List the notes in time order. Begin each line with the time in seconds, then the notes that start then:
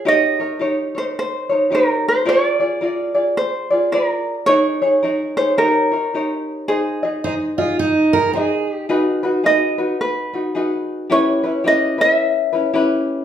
0.05 D#4 G4 A#4 C#5 D#5
0.40 D#4 A#4 C#5
0.59 D#4 G4 A#4 C#5
0.95 D#4 A#4 C5 C#5
1.19 C5
1.49 D#4 A#4 C#5
1.70 D#4 G4 A#4 C#5
1.75 A#4
2.08 C5
2.25 F4 G#4 A#4 D5
2.60 F4 G#4 D5
2.81 F4 G#4 A#4 D5
3.14 F4 G#4 D5
3.37 C5
3.70 F4 G#4 D5
3.92 F4 G#4 A#4 D5
4.46 D#4 G#4 A#4 C#5
4.82 D#4 G#4 C#5
5.03 D#4 G#4 A#4 C#5
5.37 D#4 G#4 C5 C#5
5.57 D#4 G4 A#4 C#5
5.92 D#4 A#4 C#5
6.14 D#4 G4 A#4 C#5
6.68 D#4 G#4 C5 D#5
7.03 D#4 G#4 D#5
7.24 D#4 G#4 C5 D#5
7.58 D#4 F4 G#4 D#5
7.79 D#4
8.13 D#4 G#4 A#4 D#5
8.33 D#4 G#4 C5 D#5
8.71 G4
8.89 D#4 F#4 G#4 B4
9.23 D#4 F#4 B4
9.44 D#4 F#4 G#4 B4 D#5
9.78 D#4 F#4 B4
10.01 B4
10.33 D#4 F#4 B4
10.55 D#4 F#4 G#4 B4
11.10 C#4 E4 G4 B4 C#5
11.43 C#4 E4 B4
11.64 C#4 E4 G4 B4 D#5
11.98 C#4 E4 B4 E5
12.53 C#4 E4 B4
12.73 C#4 E4 G4 B4